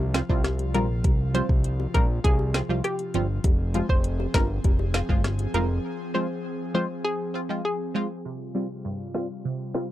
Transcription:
Already playing: analog synth bass C2, analog synth pad C3 F3 F4
0.14 synth stab C4 F4, snare, closed hi-hat
0.29 analog synth bass C2, synth stab F3 G3 C4 F4, kick
0.44 cross-stick, snare, closed hi-hat, high bongo
0.59 closed hi-hat, high bongo
0.74 analog synth bass A#1, synth stab F3 G3 C4 F4, synth pluck A#4, closed hi-hat, low bongo
1.04 analog synth bass C2, kick, closed hi-hat, high bongo
1.34 synth stab F3 G3 C4 F4, synth pluck C5, closed hi-hat, high bongo
1.49 analog synth bass C2, kick
1.64 closed hi-hat
1.80 high bongo
1.94 analog synth bass A#1, synth stab F3 G3 C4 F4, synth pluck A#4, kick, closed hi-hat, low bongo
2.24 analog synth bass C2, synth pluck G#4, kick, closed hi-hat, high bongo
2.39 high bongo
2.54 synth stab C4 F4, snare, closed hi-hat
2.69 analog synth bass C2, synth stab F3 G3 C4 F4
2.84 synth pluck G4, cross-stick, closed hi-hat, high bongo
2.99 closed hi-hat, high bongo
3.14 analog synth bass G1, synth stab F3 G3 C4 F4, closed hi-hat, low bongo
3.44 analog synth bass F1, analog synth pad F3 C4 G#4, kick, closed hi-hat, high bongo
3.74 synth stab F3 G#3 C4 F4, closed hi-hat, high bongo
3.89 analog synth bass F1, synth pluck C5, kick
4.04 closed hi-hat
4.20 high bongo
4.34 analog synth bass G1, synth stab F3 G#3 C4 F4, synth pluck A#4, kick, snare, closed hi-hat, low bongo
4.64 analog synth bass F1, kick, closed hi-hat, high bongo
4.79 high bongo
4.94 synth stab C4 F4, snare, closed hi-hat
5.09 analog synth bass G1, synth stab F3 G#3 C4 F4, kick
5.24 cross-stick, snare, closed hi-hat, high bongo
5.39 closed hi-hat, high bongo
5.54 analog synth bass F1, synth stab F3 G#3 C4 F4, synth pluck A#4, closed hi-hat, low bongo
6.14 synth stab F3 G#3 C4 F4, synth pluck C5
6.74 synth stab F3 G#3 C4 F4, synth pluck C5
7.05 synth pluck G#4
7.34 synth stab C4 F4
7.49 synth stab F3 G#3 C4 F4
7.65 synth pluck G#4
7.94 synth stab F3 G#3 C4 F4
8.24 analog synth pad C3 G3 F4, synth stab C3
8.55 synth stab G3 C4 F4
8.85 synth stab G2
9.14 synth stab G3 C4 F4, snare
9.45 synth stab C3
9.74 synth stab G3 C4 F4, snare

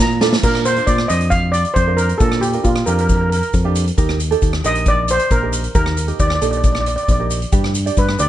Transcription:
0.00 fingered electric bass A#2, steel pan A#5
0.11 shaker
0.21 ukulele D4 F4 A4, snare, shaker
0.33 snare
0.43 fingered electric bass A#2, ukulele D4 F4 A#4, steel pan A#4, kick, crash, shaker
0.55 cross-stick
0.65 steel pan C5, closed hi-hat, shaker
0.76 ukulele D4 F4 A#4, closed hi-hat
0.87 fingered electric bass A#2, steel pan D5, kick, closed hi-hat, shaker
0.98 cross-stick
1.08 fingered electric bass F2, ukulele D4 F4 C5, steel pan D#5, closed hi-hat, shaker
1.21 closed hi-hat
1.30 steel pan F5, kick, closed hi-hat, shaker
1.52 steel pan D5, closed hi-hat, shaker
1.65 closed hi-hat, shaker
1.74 fingered electric bass F2, steel pan C5, kick, closed hi-hat, shaker
1.87 ukulele D4 F4 A#4
1.97 steel pan A#4, closed hi-hat, shaker
2.09 closed hi-hat, shaker
2.18 fingered electric bass A#2, ukulele D4 F4, steel pan A4, kick, closed hi-hat, shaker
2.22 ukulele A#4
2.32 cross-stick
2.41 steel pan G4, closed hi-hat, shaker
2.53 ukulele D4 F4 A#4, closed hi-hat
2.64 fingered electric bass A#2, steel pan F4, kick, closed hi-hat, shaker
2.76 cross-stick
2.86 fingered electric bass F2, ukulele D4 F4 G4, steel pan A#4, closed hi-hat, shaker
2.94 steel pan A#4
2.99 steel pan A#4, closed hi-hat
3.08 steel pan A#4, kick, closed hi-hat, shaker
3.15 steel pan A#4
3.21 steel pan A#4
3.30 steel pan A#4, closed hi-hat
3.37 steel pan A#4
3.43 closed hi-hat, shaker
3.53 fingered electric bass F2, kick, closed hi-hat, shaker
3.64 ukulele D4 F4 G4
3.75 closed hi-hat, shaker
3.87 closed hi-hat, shaker
3.98 fingered electric bass D#2, ukulele D#4 G4 A#4, kick, closed hi-hat, shaker
4.09 cross-stick
4.20 closed hi-hat, shaker
4.31 ukulele D#4 G4 A4, closed hi-hat
4.42 fingered electric bass D#2, kick, closed hi-hat, shaker
4.53 cross-stick
4.64 fingered electric bass A#1, ukulele D#4 G4 A#4, steel pan D#5, closed hi-hat, shaker
4.75 closed hi-hat
4.86 steel pan D5, kick, closed hi-hat, shaker
5.08 steel pan C5, closed hi-hat, shaker
5.19 closed hi-hat
5.31 fingered electric bass A#1, steel pan A#4, kick, closed hi-hat, shaker
5.42 ukulele D#4 G4 A#4
5.53 closed hi-hat, shaker
5.64 closed hi-hat, shaker
5.75 fingered electric bass D#2, ukulele D#4 G4 A#4, steel pan A#4, kick, closed hi-hat, shaker
5.86 cross-stick
5.97 closed hi-hat, shaker
6.07 ukulele D#4 G4 A#4, closed hi-hat, shaker
6.19 fingered electric bass D#2, steel pan D5, kick, closed hi-hat, shaker
6.27 steel pan D5, cross-stick
6.35 steel pan D5
6.41 fingered electric bass A#1, ukulele D#4 G4 A4, steel pan D5, closed hi-hat, shaker
6.51 steel pan D5, closed hi-hat, shaker
6.57 steel pan D5
6.63 steel pan D5, kick, closed hi-hat, shaker
6.73 steel pan D5, cross-stick
6.80 steel pan D5
6.86 steel pan D5, closed hi-hat
6.96 steel pan D5, closed hi-hat, shaker
7.03 steel pan D5
7.08 fingered electric bass A#1, steel pan D5, kick, closed hi-hat, shaker
7.19 ukulele D#4 G4 A#4
7.30 closed hi-hat, shaker
7.42 closed hi-hat
7.52 fingered electric bass G2, ukulele D4 G4 B4, kick, closed hi-hat, shaker
7.64 cross-stick
7.75 closed hi-hat, shaker
7.86 ukulele D4 G4 D5, closed hi-hat
7.97 fingered electric bass G2, steel pan B4, kick, closed hi-hat, shaker
8.09 cross-stick
8.18 fingered electric bass D2, ukulele D4 G4 B4, steel pan D5, closed hi-hat, shaker

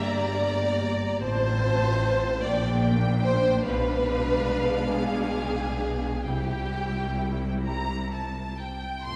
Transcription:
Already playing: double bass section G1, cello section G2, viola section A#3 G4, violin section A#5
0.02 violin section D5
1.21 double bass section A1, cello section A2, viola section C4 F4, violin section C5 A5
2.43 double bass section A#1, cello section A#2, viola section A#3 D4, violin section D5 G5
3.23 violin section C5
3.63 double bass section B1, cello section B2, viola section G#3, violin section B4 F5
4.92 violin section G#4
6.26 double bass section C2, cello section C3, viola section G3 E4, violin section G4 G5
7.64 violin section A#5
8.14 violin section A5
8.59 violin section G5
9.05 double bass section F1, cello section F2, viola section A3 F4, violin section A3 C5 C6

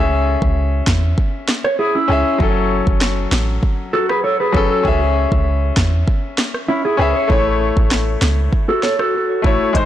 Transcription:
Already playing: 808-style bass C#2, grand piano C#4 G#4 E5
0.42 808-style bass C#2, kick
0.87 808-style bass E2, finger snap, kick, snare
1.18 kick
1.48 finger snap, snare
1.64 clean electric guitar C#5, cross-stick
1.79 clean electric guitar E4 G#4
1.95 clean electric guitar C#4 E4
2.08 808-style bass C#2, grand piano C#4 G#4 E5
2.38 808-style bass F#1, grand piano F#3 C#4 A4, kick
2.87 808-style bass F#1, kick
3.01 finger snap, snare
3.32 808-style bass A1, finger snap, snare
3.63 kick
3.93 clean electric guitar F#4 A4
4.09 clean electric guitar G#4 B4, cross-stick
4.24 clean electric guitar A4 C#5
4.40 clean electric guitar G#4 B4
4.52 808-style bass F#1, grand piano F#3 C#4 A4, kick
4.71 clean electric guitar F#4 A4
4.83 808-style bass C#2, grand piano C#4 G#4 E5, kick
5.32 808-style bass C#2, kick
5.77 808-style bass E2, finger snap, kick, snare
6.08 kick
6.38 finger snap, snare
6.54 cross-stick
6.68 clean electric guitar C#4 E4
6.85 clean electric guitar E4 G#4
6.97 808-style bass C#2, grand piano C#4 G#4 E5, clean electric guitar G#4 B4
7.16 clean electric guitar C#5
7.28 808-style bass A1, grand piano A3 E4 C#5, kick
7.77 808-style bass A1, kick
7.91 finger snap, snare
8.22 808-style bass C#2, finger snap, snare
8.53 kick
8.69 clean electric guitar F#4 A4
8.83 clean electric guitar A4 C#5, snare
8.99 clean electric guitar F#4 A4, cross-stick
9.42 808-style bass A1, grand piano A3 E4 C#5, kick
9.73 808-style bass G#1, analog synth pad C3 D#3 G#3 D#4, grand piano G#3 D#4 C5, kick, closed hi-hat

